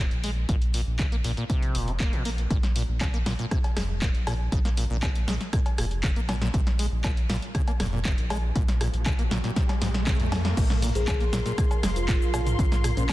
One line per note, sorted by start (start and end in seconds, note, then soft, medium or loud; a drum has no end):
0.11 0.45 A#1 loud
0.11 closed hi-hat soft
0.24 0.31 G#3 medium
0.24 open hi-hat loud
0.49 0.83 A#1 loud
0.49 0.56 A#2 medium
0.49 kick loud
0.49 closed hi-hat medium
0.62 closed hi-hat soft
0.74 0.81 A#2 medium
0.74 open hi-hat loud
0.87 1.21 A#1 medium
0.99 1.06 C#3 medium
0.99 kick loud
0.99 clap loud
0.99 closed hi-hat medium
1.12 1.16 A#3 medium
1.12 closed hi-hat soft
1.24 1.35 A#1 medium
1.24 1.32 A#2 medium
1.24 open hi-hat loud
1.37 1.44 A#2 medium
1.37 closed hi-hat soft
1.50 1.76 C3 medium
1.50 kick loud
1.50 closed hi-hat medium
1.63 closed hi-hat soft
1.75 2.09 F1 medium
1.75 1.89 A#2 medium
1.75 open hi-hat loud
1.88 1.92 C#3 medium
1.88 closed hi-hat soft
2.00 2.14 A#3 medium
2.00 kick loud
2.00 clap loud
2.00 closed hi-hat medium
2.13 2.47 A#1 loud
2.13 2.23 A#2 medium
2.13 closed hi-hat soft
2.25 2.30 A#3 loud
2.25 open hi-hat loud
2.38 closed hi-hat soft
2.51 2.85 A#1 loud
2.51 2.58 A#2 medium
2.51 kick loud
2.51 closed hi-hat medium
2.63 snare medium
2.63 closed hi-hat soft
2.76 2.83 A#2 medium
2.76 open hi-hat loud
2.89 3.23 A#1 medium
3.01 3.08 C#3 medium
3.01 kick loud
3.01 snare soft
3.01 clap loud
3.01 closed hi-hat medium
3.01 cowbell medium
3.14 3.18 A#3 medium
3.14 closed hi-hat medium
3.26 3.37 A#1 medium
3.26 3.33 A#2 medium
3.26 snare medium
3.26 open hi-hat loud
3.39 3.46 A#2 medium
3.39 closed hi-hat soft
3.51 3.58 C3 medium
3.51 kick loud
3.51 cross-stick medium
3.51 closed hi-hat medium
3.64 closed hi-hat soft
3.64 cowbell soft
3.77 4.11 F1 medium
3.77 3.84 G#3 medium
3.77 cross-stick medium
3.77 snare medium
3.77 open hi-hat loud
4.02 4.09 A#2 medium
4.02 kick loud
4.02 snare soft
4.02 clap loud
4.02 closed hi-hat medium
4.15 4.49 A#1 loud
4.15 closed hi-hat soft
4.27 4.34 A#2 medium
4.27 cross-stick medium
4.27 open hi-hat loud
4.27 cowbell medium
4.52 4.86 A#1 loud
4.52 4.59 C#3 medium
4.52 kick loud
4.52 closed hi-hat medium
4.65 4.69 A#3 medium
4.65 snare medium
4.65 closed hi-hat soft
4.77 4.84 A#2 medium
4.77 open hi-hat loud
4.90 5.24 A#1 medium
4.90 4.97 A#2 medium
5.03 5.10 C3 medium
5.03 kick loud
5.03 clap loud
5.03 closed hi-hat medium
5.03 cowbell medium
5.15 closed hi-hat medium
5.28 5.38 A#1 medium
5.28 5.35 G#3 medium
5.28 snare medium
5.28 open hi-hat loud
5.41 snare soft
5.41 closed hi-hat soft
5.53 5.60 A#2 medium
5.53 kick loud
5.53 cross-stick medium
5.53 closed hi-hat medium
5.66 closed hi-hat medium
5.66 cowbell soft
5.78 6.13 F1 loud
5.78 5.85 A#2 medium
5.78 cross-stick medium
5.78 open hi-hat loud
5.91 closed hi-hat soft
6.03 6.11 C#3 medium
6.03 kick loud
6.03 clap loud
6.03 closed hi-hat medium
6.16 6.50 A#1 loud
6.16 6.20 A#3 medium
6.16 closed hi-hat soft
6.29 6.36 A#2 medium
6.29 snare medium
6.29 open hi-hat loud
6.29 cowbell medium
6.42 6.48 A#2 medium
6.42 snare medium
6.42 closed hi-hat soft
6.54 6.88 A#1 loud
6.54 6.61 C3 medium
6.54 kick loud
6.54 closed hi-hat medium
6.54 riser medium
6.67 snare medium
6.67 closed hi-hat medium
6.79 6.86 G#3 medium
6.79 open hi-hat loud
6.92 7.26 A#1 medium
7.04 7.11 A#2 medium
7.04 kick loud
7.04 snare soft
7.04 clap loud
7.04 closed hi-hat medium
7.04 cowbell medium
7.17 closed hi-hat medium
7.30 7.40 A#1 medium
7.30 7.37 A#2 medium
7.30 snare medium
7.30 open hi-hat loud
7.42 closed hi-hat soft
7.55 7.62 C#3 medium
7.55 kick loud
7.55 cross-stick medium
7.55 closed hi-hat medium
7.68 7.72 A#3 medium
7.68 closed hi-hat medium
7.68 cowbell soft
7.80 8.14 F1 loud
7.80 7.87 A#2 medium
7.80 cross-stick medium
7.80 snare medium
7.80 open hi-hat loud
7.93 8.00 A#2 medium
8.05 8.12 C3 medium
8.05 kick loud
8.05 snare soft
8.05 clap loud
8.05 closed hi-hat medium
8.18 8.52 A#1 loud
8.18 closed hi-hat medium
8.30 8.37 G#3 medium
8.30 cross-stick medium
8.30 open hi-hat loud
8.30 cowbell medium
8.56 8.90 A#1 loud
8.56 8.63 A#2 medium
8.56 kick loud
8.56 closed hi-hat medium
8.68 snare medium
8.68 closed hi-hat medium
8.81 8.88 A#2 medium
8.81 cross-stick medium
8.81 open hi-hat loud
8.94 9.28 A#1 medium
8.94 closed hi-hat soft
9.06 9.13 C#3 medium
9.06 kick loud
9.06 snare soft
9.06 clap loud
9.06 closed hi-hat medium
9.06 cowbell medium
9.19 9.23 A#3 medium
9.19 closed hi-hat medium
9.31 9.42 A#1 medium
9.31 9.38 A#2 medium
9.31 snare medium
9.31 open hi-hat loud
9.44 9.51 A#2 medium
9.44 snare soft
9.44 closed hi-hat soft
9.56 9.63 C3 medium
9.56 kick loud
9.56 snare medium
9.56 closed hi-hat medium
9.69 snare medium
9.69 closed hi-hat medium
9.69 cowbell soft
9.82 10.16 A#1 medium
9.82 9.89 G#2 loud
9.82 snare medium
9.82 open hi-hat loud
9.94 snare medium
9.94 closed hi-hat soft
10.07 10.17 C3 medium
10.07 kick loud
10.07 snare medium
10.07 clap loud
10.07 closed hi-hat medium
10.20 10.54 F2 medium
10.20 10.27 A#2 medium
10.20 closed hi-hat medium
10.32 10.36 G#2 medium
10.32 snare loud
10.32 open hi-hat loud
10.32 cowbell medium
10.45 snare medium
10.45 closed hi-hat soft
10.57 10.92 A#1 loud
10.57 10.64 A#2 medium
10.57 13.13 A#4 medium
10.57 kick loud
10.57 closed hi-hat medium
10.57 crash loud
10.57 shaker soft
10.70 snare medium
10.70 closed hi-hat soft
10.70 mid tom loud
10.82 10.90 A#2 medium
10.82 mid tom medium
10.82 open hi-hat loud
10.82 shaker medium
10.95 11.29 A#1 medium
10.95 11.03 G#4 medium
10.95 13.13 C6 medium
10.95 closed hi-hat medium
10.95 shaker soft
11.08 11.15 C#3 medium
11.08 11.16 G#4 medium
11.08 kick loud
11.08 snare soft
11.08 clap loud
11.08 closed hi-hat medium
11.08 cowbell medium
11.08 shaker soft
11.20 11.25 A#3 medium
11.20 closed hi-hat soft
11.33 11.43 A#1 medium
11.33 11.40 A#2 medium
11.33 snare medium
11.33 open hi-hat loud
11.33 shaker medium
11.43 11.53 A#2 medium
11.43 13.13 F5 medium
11.43 snare soft
11.43 closed hi-hat medium
11.43 shaker soft
11.58 11.65 C3 medium
11.58 kick loud
11.58 cross-stick medium
11.58 closed hi-hat medium
11.58 shaker soft
11.71 closed hi-hat soft
11.71 cowbell soft
11.71 shaker soft
11.83 12.18 F1 medium
11.83 11.90 G#3 medium
11.83 cross-stick medium
11.83 snare medium
11.83 open hi-hat loud
11.83 shaker medium
11.96 12.04 F4 medium
11.96 closed hi-hat medium
11.96 shaker soft
12.08 12.16 A#2 medium
12.08 12.17 F4 medium
12.08 kick loud
12.08 clap loud
12.08 closed hi-hat medium
12.08 shaker soft
12.21 12.55 A#1 loud
12.21 shaker soft
12.34 12.41 A#2 medium
12.34 cross-stick medium
12.34 open hi-hat loud
12.34 cowbell medium
12.34 shaker medium
12.47 closed hi-hat medium
12.47 mid tom medium
12.47 shaker soft
12.59 12.93 A#1 loud
12.59 12.66 C#3 medium
12.59 kick loud
12.59 closed hi-hat medium
12.59 shaker soft
12.72 12.76 A#3 medium
12.72 snare medium
12.72 closed hi-hat soft
12.72 mid tom medium
12.72 shaker soft
12.84 12.91 A#2 medium
12.84 cross-stick medium
12.84 mid tom medium
12.84 open hi-hat loud
12.84 shaker medium
12.97 13.13 A#1 medium
12.97 13.04 A#2 medium
12.97 13.13 C#4 medium
12.97 closed hi-hat medium
12.97 shaker soft
13.09 13.13 C3 medium
13.09 kick loud
13.09 snare soft
13.09 closed hi-hat medium
13.09 cowbell medium